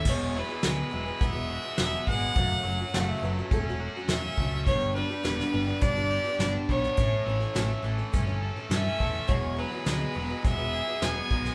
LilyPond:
<<
  \new Staff \with { instrumentName = "Fiddle" } { \time 4/4 \key e \dorian \tempo 4 = 104 cis''8 b'4. e''4 e''8 fis''8~ | fis''4. r4. e''4 | cis''8 b'4. d''4 d''8 cis''8~ | cis''4. r4. e''4 |
cis''8 b'4. e''4 gis''4 | }
  \new Staff \with { instrumentName = "Upright piano" } { \time 4/4 \key e \dorian r1 | r4 fis''16 e''16 b'8 a'8. r4 r16 | r1 | r1 |
r1 | }
  \new Staff \with { instrumentName = "Steel-string acoustic guitar" } { \time 4/4 \key e \dorian <e, b, fis gis b gis'>8 <fis gis b gis'>16 <fis gis b gis'>16 <e, b, fis gis b gis'>8 <fis gis b gis'>16 <fis gis b gis'>16 <fis gis b gis'>16 <fis gis b gis'>8 <fis gis b gis'>16 <e, b, fis gis b gis'>8 <fis gis b gis'>8 | <fis, cis fis a cis' fis'>8 <fis a cis' fis'>16 <fis a cis' fis'>16 <fis, cis fis a cis' fis'>8 <fis a cis' fis'>16 <fis a cis' fis'>16 <fis a cis' fis'>16 <fis a cis' fis'>8 <fis a cis' fis'>16 <fis, cis fis a cis' fis'>8 <fis a cis' fis'>8 | <g, d g b d' g'>8 <g b d' g'>16 <g b d' g'>16 <g, d g b d' g'>8 <g b d' g'>16 <g b d' g'>16 <g b d' g'>16 <g b d' g'>8 <g b d' g'>16 <g, d g b d' g'>8 <g b d' g'>8 | <a, e a cis' a'>8 <e a cis' a'>16 <a cis' a'>16 <a, e a cis' a'>16 <a cis' a'>16 <e a cis' a'>16 <a cis' a'>16 <e a cis' a'>16 <a cis' a'>8 <a cis' a'>16 <a, e a cis' a'>8 <e a cis' a'>8 |
<e, b, fis gis b gis'>8 <fis gis b gis'>16 <fis gis b gis'>16 <e, b, fis gis b gis'>8 <fis gis b gis'>16 <fis gis b gis'>16 <fis gis b gis'>16 <fis gis b gis'>8 <fis gis b gis'>16 <e, b, fis gis b gis'>8 <fis gis b gis'>8 | }
  \new Staff \with { instrumentName = "Overdriven electric guitar" } { \time 4/4 \key e \dorian e,8 e8 gis8 e8 b8 fis'8 b8 gis8 | fis,8 fis8 a8 fis8 cis'8 fis'8 cis'8 a8 | g,8 g8 b8 g8 d'8 g'8 d'8 b8 | a,8 e8 a8 e8 cis'8 a'8 cis'8 a8 |
e,8 fis8 gis8 fis8 b8 gis'8 b8 gis8 | }
  \new Staff \with { instrumentName = "Picked electric bass" } { \clef bass \time 4/4 \key e \dorian e,,4 d,8 e,,8 e,,4 e,,8 gis,,8 | fis,,8 fis,,8 fis,,8 fis,,8 e,,4 e,8 cis,8 | g,,4 e,,8 g,,8 g,,4 g,,8 b,,8 | a,,8 a,,8 a,,8 a,,8 g,,4 g,8 e,8 |
e,,4 d,8 e,,8 e,,4 e,,8 b,,8 | }
  \new DrumStaff \with { instrumentName = "Drums" } \drummode { \time 4/4 <cymc bd>4 <hh sn>4 <hh bd>4 <hh sn>8 bd8 | <hh bd>4 <hh sn>4 <hh bd>4 <hh sn>8 bd8 | <hh bd>4 <hh sn>16 sn8. <hh bd>4 <hh sn>8 bd16 sn16 | <hh bd>4 <hh sn>4 <hh bd>4 <hh sn>8 bd8 |
<hh bd>4 <hh sn>4 <hh bd>4 <hh sn>8 bd16 sn16 | }
>>